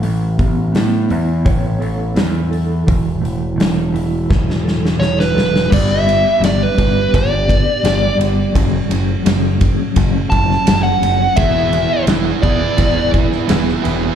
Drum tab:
CC |----------------|----------------|x---------------|----------------|
RD |----------------|----------------|--x-x-x-x-x-x-x-|x-x-x-x-x-x-x-x-|
HH |o-o-o-o-o-o-o-o-|o-o-o-o---------|----------------|----------------|
SD |----o-------o---|----o---oooooooo|----o-------o---|----o------oo---|
BD |--o-----o-------|o-------o-------|o-----o-o-o-----|o-----o-o-o-----|

CC |----------------|
RD |x-x-x-x-x-x-x-x-|
HH |----------------|
SD |----o------ooo--|
BD |o-----o-o-o-----|